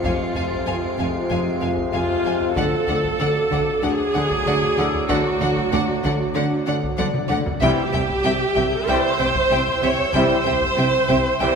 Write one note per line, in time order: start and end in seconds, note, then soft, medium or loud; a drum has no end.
0.00 2.52 F2 medium
0.00 0.23 F2 loud
0.00 2.53 C3 medium
0.00 2.53 G#3 medium
0.00 2.52 C4 medium
0.00 2.53 F4 medium
0.00 2.53 C5 loud
0.00 2.53 F5 medium
0.00 2.22 C7 soft
0.00 0.57 C#7 soft
0.00 taiko loud
0.04 0.12 F1 medium
0.04 0.12 F2 medium
0.04 1.59 F4 medium
0.04 0.12 F5 medium
0.04 0.13 G#5 medium
0.35 0.44 F1 medium
0.35 0.44 F2 medium
0.35 0.55 F2 medium
0.35 0.44 F5 medium
0.35 0.44 G#5 medium
0.35 taiko low medium
0.51 taiko medium
0.57 1.58 D7 soft
0.67 0.75 F1 medium
0.67 0.75 F2 medium
0.67 0.86 F2 medium
0.67 0.75 F5 medium
0.67 0.75 G#5 medium
0.98 1.07 F1 medium
0.98 1.07 F2 medium
0.98 1.18 F2 medium
0.98 1.07 F5 medium
0.98 1.07 G#5 medium
0.98 taiko medium
1.30 1.38 F1 medium
1.30 1.38 F2 medium
1.30 1.50 F3 medium
1.30 1.38 F5 medium
1.30 1.39 G#5 medium
1.62 1.70 F1 medium
1.62 1.70 F2 medium
1.62 1.81 F2 medium
1.62 1.70 F5 medium
1.62 1.71 G#5 medium
1.78 taiko medium
1.93 2.02 F1 medium
1.93 2.01 F2 medium
1.93 2.13 F2 medium
1.93 2.53 F4 loud
1.93 2.01 F5 medium
1.93 2.02 G#5 medium
2.09 taiko low medium
2.25 2.33 F1 medium
2.25 2.33 F2 medium
2.25 2.45 F2 medium
2.25 2.33 F5 medium
2.25 2.34 G#5 medium
2.41 taiko low medium
2.56 2.65 D2 medium
2.56 7.62 D2 medium
2.56 7.45 D3 medium
2.56 2.65 D3 medium
2.56 2.76 D3 loud
2.56 7.45 F#3 medium
2.56 7.45 A3 medium
2.56 7.45 F#4 medium
2.56 7.62 F#4 medium
2.56 3.83 A4 loud
2.56 2.65 D5 medium
2.56 7.62 D5 medium
2.56 2.65 F#5 medium
2.56 7.62 F#5 medium
2.56 2.66 F#5 medium
2.56 7.26 A5 medium
2.56 taiko medium
2.88 2.96 D2 medium
2.88 2.96 D3 medium
2.88 3.08 D3 medium
2.88 2.98 D5 medium
2.88 2.97 F#5 medium
2.88 taiko low medium
3.04 taiko medium
3.20 3.28 D2 medium
3.20 3.28 D3 medium
3.20 3.39 D3 medium
3.20 3.28 D5 medium
3.20 3.28 F#5 medium
3.20 7.27 D6 medium
3.51 3.60 D2 medium
3.51 3.59 D3 medium
3.51 3.70 D3 loud
3.51 3.60 D5 medium
3.51 3.59 F#5 medium
3.51 3.60 F#5 medium
3.51 taiko medium
3.82 3.91 D2 medium
3.82 3.90 D3 medium
3.82 4.02 D4 medium
3.82 5.09 G#4 loud
3.82 3.91 D5 medium
3.82 3.91 F#5 medium
3.82 3.92 F#5 medium
4.14 4.23 D2 medium
4.14 4.23 D3 medium
4.14 4.34 D3 medium
4.14 4.22 D5 medium
4.14 4.22 F#5 medium
4.14 4.23 F#5 medium
4.30 taiko medium
4.46 4.54 D2 medium
4.46 4.65 D3 medium
4.46 4.54 D3 medium
4.46 4.54 D5 medium
4.46 4.54 F#5 medium
4.46 4.55 F#5 medium
4.62 taiko low medium
4.77 4.85 D2 medium
4.77 4.85 D3 medium
4.77 4.97 D3 medium
4.77 8.68 E4 medium
4.77 4.85 D5 medium
4.77 4.86 F#5 medium
4.77 4.87 F#5 medium
4.77 8.69 E6 medium
4.94 taiko low medium
5.09 5.17 D2 medium
5.09 5.17 D3 loud
5.09 5.28 D3 loud
5.09 6.64 F#4 loud
5.09 5.17 D5 medium
5.09 5.17 F#5 medium
5.09 taiko medium
5.40 5.49 D2 medium
5.40 5.48 D3 medium
5.40 5.60 D3 medium
5.40 5.49 D5 medium
5.40 5.49 F#5 medium
5.40 5.50 F#5 medium
5.40 taiko low medium
5.57 taiko medium
5.72 5.80 D2 loud
5.72 5.80 D3 medium
5.72 5.92 D3 medium
5.72 5.80 D5 medium
5.72 5.80 F#5 medium
5.72 5.82 F#5 medium
6.04 6.12 D2 medium
6.04 6.12 D3 medium
6.04 6.24 D3 loud
6.04 6.12 D5 medium
6.04 6.12 F#5 medium
6.04 6.13 F#5 medium
6.04 taiko medium
6.35 6.43 D2 medium
6.35 6.43 D3 medium
6.35 6.55 D4 medium
6.35 6.43 D5 medium
6.35 6.43 F#5 medium
6.35 6.44 F#5 medium
6.67 6.75 D2 medium
6.67 6.75 D3 medium
6.67 6.87 D3 medium
6.67 6.75 D5 medium
6.67 6.75 F#5 medium
6.83 taiko medium
6.98 7.06 D2 medium
6.98 7.07 D3 medium
6.98 7.18 D3 medium
6.98 8.89 D4 medium
6.98 7.06 D5 medium
6.98 8.89 D5 medium
6.98 7.06 F#5 medium
6.98 taiko high medium
7.14 taiko mid loud
7.28 7.38 D2 medium
7.28 7.38 D3 medium
7.28 7.50 D3 medium
7.28 7.37 D5 medium
7.28 7.36 F#5 medium
7.28 7.39 F#5 medium
7.28 taiko mid loud
7.46 taiko low loud
7.60 7.69 C2 loud
7.60 11.55 C2 medium
7.60 7.69 C3 loud
7.60 7.81 C3 loud
7.60 7.84 E3 medium
7.60 7.84 G3 medium
7.60 7.84 C4 medium
7.60 7.84 E4 medium
7.60 11.55 E4 medium
7.60 8.84 G4 loud
7.60 7.69 E5 medium
7.60 11.55 E5 medium
7.60 7.70 G5 medium
7.60 11.55 G5 medium
7.60 11.55 E6 medium
7.60 11.55 G6 medium
7.60 taiko loud
7.92 8.00 C2 medium
7.92 8.01 C3 medium
7.92 8.13 C3 medium
7.92 8.01 E5 medium
7.92 8.02 G5 medium
7.92 taiko low medium
8.09 taiko medium
8.24 8.32 C2 loud
8.24 8.33 C3 medium
8.24 8.44 C3 medium
8.24 8.33 E5 medium
8.24 8.32 G5 medium
8.55 8.64 C2 medium
8.55 8.75 C3 loud
8.55 8.64 C3 medium
8.55 11.55 E5 medium
8.55 8.64 E5 medium
8.55 8.64 G5 medium
8.55 taiko medium
8.87 8.95 C2 loud
8.87 8.96 C3 medium
8.87 9.10 E3 medium
8.87 9.10 G3 medium
8.87 9.07 C4 medium
8.87 9.11 C4 medium
8.87 9.11 E4 medium
8.87 9.83 C5 loud
8.87 8.96 E5 medium
8.87 8.96 G5 medium
9.19 9.28 C2 medium
9.19 9.27 C3 medium
9.19 9.39 C3 medium
9.19 9.27 E5 medium
9.19 9.28 G5 medium
9.35 taiko medium
9.50 9.59 C2 medium
9.50 9.70 C3 medium
9.50 9.59 C3 loud
9.50 9.59 E5 medium
9.50 9.60 G5 medium
9.68 taiko low medium
9.82 9.91 C2 medium
9.82 10.01 C3 medium
9.82 9.91 C3 medium
9.82 10.15 C#5 loud
9.82 9.91 E5 medium
9.82 9.91 G5 medium
9.99 taiko low medium
10.14 10.22 C2 loud
10.14 10.22 C3 loud
10.14 10.33 C3 loud
10.14 10.37 E3 medium
10.14 10.37 G3 medium
10.14 10.37 C4 medium
10.14 10.37 E4 medium
10.14 11.38 C5 loud
10.14 10.22 E5 medium
10.14 10.22 G5 medium
10.14 taiko loud
10.45 10.54 C2 medium
10.45 10.65 C3 medium
10.45 10.54 C3 medium
10.45 10.54 E5 medium
10.45 10.53 G5 medium
10.45 taiko low medium
10.62 taiko medium
10.78 10.86 C2 medium
10.78 10.86 C3 medium
10.78 10.97 C3 medium
10.78 10.86 E5 medium
10.78 10.86 G5 medium
11.09 11.17 C2 medium
11.09 11.28 C3 loud
11.09 11.18 C3 medium
11.09 11.18 E5 medium
11.09 11.17 G5 medium
11.09 taiko medium
11.40 11.49 C2 medium
11.40 11.49 C3 medium
11.40 11.55 E3 medium
11.40 11.55 G3 medium
11.40 11.55 C4 medium
11.40 11.55 E4 medium
11.40 11.55 C5 loud
11.40 11.49 E5 medium
11.40 11.48 G5 medium